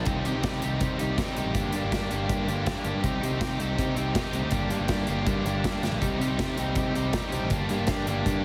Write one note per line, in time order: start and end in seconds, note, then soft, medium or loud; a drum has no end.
0.05 0.22 C2 medium
0.05 0.23 C3 medium
0.05 0.24 D#3 medium
0.05 0.25 G3 medium
0.05 0.25 C4 medium
0.05 0.25 D#4 medium
0.05 3.01 G4 medium
0.05 0.26 G4 medium
0.05 1.54 D#5 medium
0.05 1.54 C6 medium
0.05 kick medium
0.05 closed hi-hat medium
0.25 0.41 C3 medium
0.25 0.34 C3 medium
0.25 0.42 D#3 medium
0.25 0.43 G3 medium
0.25 0.44 C4 medium
0.25 0.43 D#4 medium
0.25 0.44 G4 medium
0.25 closed hi-hat medium
0.35 0.43 C2 medium
0.43 0.61 C3 medium
0.43 0.59 C3 medium
0.43 0.62 D#3 medium
0.43 0.63 G3 medium
0.43 0.61 C4 medium
0.43 0.62 D#4 medium
0.43 0.64 G4 medium
0.43 kick loud
0.43 snare medium
0.43 closed hi-hat medium
0.62 0.78 C2 medium
0.62 0.79 C3 medium
0.62 0.80 D#3 medium
0.62 0.81 G3 medium
0.62 0.79 C4 medium
0.62 0.81 D#4 medium
0.62 0.83 G4 medium
0.62 closed hi-hat medium
0.80 0.98 C3 medium
0.80 0.97 C3 medium
0.80 0.99 D#3 medium
0.80 1.00 G3 medium
0.80 0.98 C4 medium
0.80 1.00 D#4 medium
0.80 1.01 G4 medium
0.80 kick loud
0.80 closed hi-hat medium
0.99 1.20 C2 medium
0.99 1.17 C3 medium
0.99 1.18 D#3 medium
0.99 1.19 G3 medium
0.99 1.16 C4 medium
0.99 1.19 D#4 medium
0.99 1.20 G4 medium
0.99 closed hi-hat medium
1.17 1.35 C3 medium
1.17 1.26 C3 medium
1.17 1.35 D#3 medium
1.17 1.37 G3 medium
1.17 1.36 C4 medium
1.17 1.37 D#4 medium
1.17 1.38 G4 medium
1.17 kick medium
1.17 snare medium
1.17 closed hi-hat medium
1.36 1.45 C2 medium
1.36 1.54 C3 medium
1.36 1.54 D#3 medium
1.36 1.55 G3 medium
1.36 1.54 C4 medium
1.36 1.55 D#4 medium
1.36 1.56 G4 medium
1.36 closed hi-hat medium
1.45 1.53 A1 medium
1.54 1.70 G1 medium
1.54 1.73 G2 medium
1.54 1.73 D3 medium
1.54 1.75 G3 medium
1.54 1.74 A#3 medium
1.54 1.75 D4 medium
1.54 1.76 G4 medium
1.54 3.02 A#4 medium
1.54 3.02 A5 medium
1.54 kick medium
1.54 closed hi-hat medium
1.73 1.81 G2 medium
1.73 1.91 G2 medium
1.73 1.92 D3 medium
1.73 1.93 G3 medium
1.73 1.93 A#3 medium
1.73 1.93 D4 medium
1.73 1.94 G4 medium
1.73 closed hi-hat medium
1.84 1.91 G1 medium
1.92 2.07 G2 medium
1.92 2.10 G2 medium
1.92 2.11 D3 medium
1.92 2.13 G3 medium
1.92 2.12 A#3 medium
1.92 2.13 D4 medium
1.92 2.14 G4 medium
1.92 kick medium
1.92 snare medium
1.92 closed hi-hat medium
2.11 2.26 G1 medium
2.11 2.29 G2 medium
2.11 2.29 D3 medium
2.11 2.31 G3 medium
2.11 2.31 A#3 loud
2.11 2.30 D4 medium
2.11 2.32 G4 loud
2.11 closed hi-hat medium
2.29 2.46 G2 medium
2.29 2.45 G2 medium
2.29 2.47 D3 medium
2.29 2.49 G3 medium
2.29 2.48 A#3 medium
2.29 2.49 D4 medium
2.29 2.50 G4 medium
2.29 kick loud
2.29 closed hi-hat medium
2.47 2.68 G1 medium
2.47 2.66 G2 medium
2.47 2.66 D3 medium
2.47 2.67 G3 medium
2.47 2.67 A#3 medium
2.47 2.68 D4 medium
2.47 2.69 G4 medium
2.47 closed hi-hat medium
2.66 2.84 G2 medium
2.66 2.74 G2 medium
2.66 2.85 D3 medium
2.66 2.86 G3 medium
2.66 2.86 A#3 medium
2.66 2.86 D4 medium
2.66 2.88 G4 medium
2.66 kick medium
2.66 snare loud
2.66 closed hi-hat medium
2.84 2.92 G1 medium
2.84 3.02 G2 medium
2.84 3.03 D3 medium
2.84 3.05 G3 medium
2.84 3.03 A#3 medium
2.84 3.04 D4 medium
2.84 3.06 G4 medium
2.84 closed hi-hat soft
2.94 3.02 G2 medium
3.01 3.19 C2 medium
3.01 3.21 C3 medium
3.01 3.23 G3 medium
3.01 3.20 C4 medium
3.01 3.20 D#4 medium
3.01 4.50 D#4 medium
3.01 3.21 G4 medium
3.01 4.50 C5 medium
3.01 4.50 G5 medium
3.01 kick medium
3.01 closed hi-hat medium
3.06 3.23 C4 medium
3.06 3.24 D#4 medium
3.06 3.25 G4 loud
3.23 3.40 C3 medium
3.23 3.30 C3 medium
3.23 3.42 G3 medium
3.23 3.42 C4 medium
3.23 3.42 D#4 medium
3.23 3.43 G4 medium
3.23 closed hi-hat medium
3.31 3.39 C2 medium
3.41 3.56 C3 medium
3.41 3.59 C3 medium
3.41 3.60 G3 medium
3.41 3.60 C4 medium
3.41 3.61 D#4 medium
3.41 3.62 G4 medium
3.41 kick medium
3.41 snare medium
3.41 closed hi-hat medium
3.60 3.75 C2 medium
3.60 3.77 C3 medium
3.60 3.78 G3 medium
3.60 3.78 C4 medium
3.60 3.78 D#4 loud
3.60 3.79 G4 medium
3.60 closed hi-hat medium
3.78 3.95 C3 medium
3.78 3.94 C3 medium
3.78 3.96 G3 medium
3.78 3.96 C4 medium
3.78 3.97 D#4 medium
3.78 3.97 G4 medium
3.78 kick loud
3.78 closed hi-hat medium
3.96 4.17 C2 medium
3.96 4.13 C3 medium
3.96 4.15 G3 medium
3.96 4.15 C4 medium
3.96 4.16 D#4 medium
3.96 4.17 G4 medium
3.96 closed hi-hat medium
4.14 4.33 C3 medium
4.14 4.23 C3 medium
4.14 4.34 G3 medium
4.14 4.34 C4 medium
4.14 4.35 D#4 medium
4.14 4.36 G4 medium
4.14 kick loud
4.14 snare loud
4.14 closed hi-hat medium
4.32 4.40 C2 medium
4.32 4.51 C3 medium
4.32 4.52 G3 medium
4.32 4.49 C4 medium
4.32 closed hi-hat medium
4.36 4.52 C4 medium
4.36 4.52 D#4 medium
4.36 4.54 G4 medium
4.41 4.50 D2 medium
4.51 4.68 G1 medium
4.51 4.69 G2 medium
4.51 4.70 D3 medium
4.51 4.71 G3 medium
4.51 4.71 A#3 medium
4.51 4.71 D4 medium
4.51 6.00 G4 medium
4.51 4.73 G4 loud
4.51 6.00 A#4 medium
4.51 6.00 A5 medium
4.51 kick loud
4.51 closed hi-hat medium
4.70 4.78 G2 medium
4.70 4.88 G2 medium
4.70 4.89 D3 medium
4.70 4.90 G3 medium
4.70 4.90 A#3 medium
4.70 4.90 D4 medium
4.70 4.92 G4 medium
4.70 closed hi-hat medium
4.79 4.87 G1 medium
4.88 5.05 G2 medium
4.88 5.06 G2 medium
4.88 5.07 D3 medium
4.88 5.08 G3 medium
4.88 5.08 A#3 medium
4.88 5.09 D4 medium
4.88 5.10 G4 medium
4.88 kick loud
4.88 snare medium
4.88 closed hi-hat medium
5.07 5.23 G1 medium
5.07 5.25 G2 medium
5.07 5.26 D3 medium
5.07 5.27 G3 medium
5.07 5.27 A#3 medium
5.07 5.27 D4 medium
5.07 5.29 G4 loud
5.07 closed hi-hat medium
5.26 5.44 G2 medium
5.26 5.42 G2 medium
5.26 5.45 D3 medium
5.26 5.46 G3 medium
5.26 5.46 A#3 medium
5.26 5.46 D4 medium
5.26 5.48 G4 medium
5.26 kick loud
5.26 closed hi-hat medium
5.45 5.66 G1 medium
5.45 5.63 G2 medium
5.45 5.64 D3 medium
5.45 5.65 G3 medium
5.45 5.65 A#3 medium
5.45 5.65 D4 medium
5.45 5.67 G4 medium
5.45 closed hi-hat medium
5.64 5.82 G2 medium
5.64 5.72 G2 medium
5.64 5.83 D3 medium
5.64 5.84 G3 medium
5.64 5.83 A#3 medium
5.64 5.84 D4 medium
5.64 5.86 G4 medium
5.64 kick medium
5.64 snare loud
5.64 closed hi-hat medium
5.83 5.90 G1 medium
5.83 6.00 G2 medium
5.83 6.01 D3 medium
5.83 6.03 G3 medium
5.83 6.01 A#3 medium
5.83 6.01 D4 medium
5.83 6.04 G4 medium
5.83 snare medium
5.83 closed hi-hat soft
5.90 5.99 A#1 medium
6.00 6.17 C2 medium
6.00 6.19 C3 medium
6.00 6.21 G3 medium
6.00 6.20 C4 medium
6.00 7.48 D#4 medium
6.00 6.19 D#4 medium
6.00 7.48 C5 medium
6.00 7.48 G5 medium
6.00 kick medium
6.00 closed hi-hat medium
6.04 6.21 D#4 loud
6.04 6.22 G4 loud
6.19 6.27 C3 medium
6.19 6.38 C3 medium
6.19 6.39 G3 medium
6.19 6.39 C4 medium
6.19 6.39 D#4 medium
6.19 6.41 G4 medium
6.19 closed hi-hat medium
6.30 6.37 C2 medium
6.39 6.56 C3 medium
6.39 6.54 C3 medium
6.39 6.57 G3 medium
6.39 6.57 C4 medium
6.39 6.58 D#4 medium
6.39 6.59 G4 medium
6.39 kick medium
6.39 snare medium
6.39 closed hi-hat medium
6.57 6.74 C2 medium
6.57 6.75 C3 medium
6.57 6.76 G3 medium
6.57 6.76 C4 medium
6.57 6.77 D#4 medium
6.57 6.78 G4 medium
6.57 closed hi-hat medium
6.75 6.91 C3 medium
6.75 6.92 C3 medium
6.75 6.94 G3 medium
6.75 6.94 C4 medium
6.75 6.94 D#4 medium
6.75 6.95 G4 medium
6.75 kick loud
6.75 closed hi-hat medium
6.93 7.16 C2 medium
6.93 7.12 C3 medium
6.93 7.13 G3 medium
6.93 7.13 C4 medium
6.93 7.13 D#4 medium
6.93 7.14 G4 medium
6.93 closed hi-hat medium
7.13 7.30 C3 medium
7.13 7.21 C3 medium
7.13 7.32 G3 medium
7.13 7.32 C4 medium
7.13 7.32 D#4 medium
7.13 7.34 G4 medium
7.13 kick medium
7.13 snare medium
7.13 closed hi-hat medium
7.32 7.40 C2 medium
7.32 7.49 C3 medium
7.32 7.51 G3 medium
7.32 7.50 C4 medium
7.32 7.50 D#4 medium
7.32 7.52 G4 medium
7.32 closed hi-hat medium
7.43 7.50 A1 medium
7.50 7.66 G1 medium
7.50 7.68 G2 medium
7.50 7.69 D3 medium
7.50 7.70 G3 medium
7.50 7.70 A#3 medium
7.50 7.70 D4 medium
7.50 8.45 G4 medium
7.50 7.71 G4 medium
7.50 8.45 A#4 medium
7.50 8.45 A5 medium
7.50 kick medium
7.50 closed hi-hat medium
7.69 7.86 G2 medium
7.69 7.77 G2 medium
7.69 7.87 D3 medium
7.69 7.88 G3 medium
7.69 7.88 A#3 medium
7.69 7.88 D4 medium
7.69 7.89 G4 medium
7.69 closed hi-hat medium
7.79 7.86 G1 medium
7.87 8.06 G2 medium
7.87 8.03 G2 medium
7.87 8.07 D3 medium
7.87 8.08 G3 medium
7.87 8.08 A#3 medium
7.87 8.08 D4 medium
7.87 8.10 G4 medium
7.87 kick loud
7.87 snare medium
7.87 closed hi-hat medium
8.06 8.22 G1 medium
8.06 8.25 G2 medium
8.06 8.25 D3 medium
8.06 8.27 G3 medium
8.06 8.27 A#3 medium
8.06 8.27 D4 medium
8.06 8.29 G4 loud
8.06 closed hi-hat medium
8.26 8.41 G2 medium
8.26 8.43 G2 medium
8.26 8.44 D3 medium
8.26 8.45 G3 medium
8.26 8.44 A#3 medium
8.26 8.45 D4 medium
8.26 8.45 G4 medium
8.26 kick medium
8.26 closed hi-hat medium